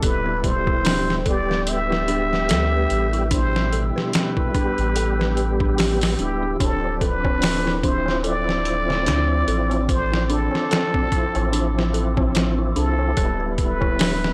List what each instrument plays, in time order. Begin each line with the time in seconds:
0.00 sub bass D1, tonewheel organ B2 G3, ambient pad G4 G5 E6, synth bell A4, kick, closed hi-hat
0.06 tonewheel organ E4, muted trumpet B4
0.26 synth bell B4
0.44 muted trumpet C5, kick, closed hi-hat
0.67 synth bell E4, kick
0.85 synth bell D4, snare, open hi-hat
1.10 snare
1.22 tonewheel organ G3, synth bell A4, kick, closed hi-hat
1.26 tonewheel organ B3, muted trumpet D5
1.31 tonewheel organ G4
1.49 synth bell B4, snare
1.67 muted trumpet E5, closed hi-hat
1.90 synth bell E4, snare
2.08 synth bell D4, closed hi-hat
2.33 snare
2.49 sub bass D2, synth bell A4, snare, closed hi-hat
2.72 synth bell B4
2.90 sub bass A1, closed hi-hat
3.13 synth bell E4, closed hi-hat
3.27 tonewheel organ G3, synth bell D4, kick, closed hi-hat
3.32 tonewheel organ B2, muted trumpet C5
3.36 tonewheel organ E4
3.56 snare
3.73 synth bell A4, closed hi-hat
3.96 synth bell B4, snare
4.13 muted trumpet B4, snare, closed hi-hat
4.37 synth bell E4, kick
4.51 tonewheel organ G3, synth bell D4, kick, closed hi-hat
4.55 tonewheel organ B3
4.59 tonewheel organ G4
4.78 sub bass A1, closed hi-hat
4.96 synth bell A4, closed hi-hat
5.19 synth bell B4, snare
5.37 closed hi-hat
5.60 synth bell D4, kick
5.78 synth bell G4, snare, open hi-hat
6.01 snare, open hi-hat
6.18 sub bass D1, tonewheel organ G3 B3, synth bell D4, muted trumpet G4, closed hi-hat
6.22 tonewheel organ E4
6.43 synth bell D4
6.56 tonewheel organ F3, ambient pad C4 D6
6.60 sub bass D1, tonewheel organ C4, synth bell D4, muted trumpet A4, kick, closed hi-hat, tabla na
6.65 tonewheel organ D4
6.83 tabla na
7.01 synth bell A4, muted trumpet B4, kick, closed hi-hat
7.24 synth bell C4, kick, tabla na
7.42 snare, open hi-hat, tabla na
7.64 synth bell E4, snare, tabla na
7.79 tonewheel organ F3
7.83 tonewheel organ C4, synth bell D4, muted trumpet C5, kick, closed hi-hat
7.88 tonewheel organ E4
8.06 snare, tabla na
8.23 synth bell A4, muted trumpet D5, closed hi-hat, tabla na
8.48 synth bell C4, snare, tabla na
8.65 closed hi-hat
8.88 synth bell E4, snare, tabla na
9.05 sub bass D2, synth bell D4, snare, closed hi-hat, tabla na
9.29 tabla na
9.47 sub bass A1, synth bell A4, closed hi-hat
9.70 synth bell C4, closed hi-hat, tabla na
9.85 tonewheel organ F3, kick, closed hi-hat, tabla na
9.89 tonewheel organ C4, muted trumpet C5
9.94 tonewheel organ D4
10.10 synth bell E4, snare, tabla na
10.30 synth bell D4, muted trumpet A4, closed hi-hat
10.51 snare, tabla na
10.70 synth bell A4, snare, closed hi-hat, tabla na
10.93 synth bell C4, kick, tabla na
11.08 tonewheel organ F3
11.12 tonewheel organ C4, kick, closed hi-hat
11.16 tonewheel organ E4
11.35 sub bass A1, synth bell E4, closed hi-hat, tabla na
11.52 synth bell D4, closed hi-hat, tabla na
11.75 snare, tabla na
11.94 synth bell A4, closed hi-hat
12.17 synth bell C4, kick, tabla na
12.35 snare, closed hi-hat, tabla na
12.58 synth bell E4, tabla na
12.76 sub bass C2, synth bell D4, muted trumpet A4, closed hi-hat
12.99 tabla na
13.13 sub bass D1, tonewheel organ G3, ambient pad G4 E5 B5, synth bell A4, kick, closed hi-hat, tabla na
13.18 tonewheel organ B3
13.22 tonewheel organ E4
13.40 synth bell B4, tabla na
13.58 muted trumpet B4, kick, closed hi-hat
13.81 synth bell E4, kick, tabla na
13.99 synth bell D4, snare, open hi-hat, tabla na
14.23 snare, tabla na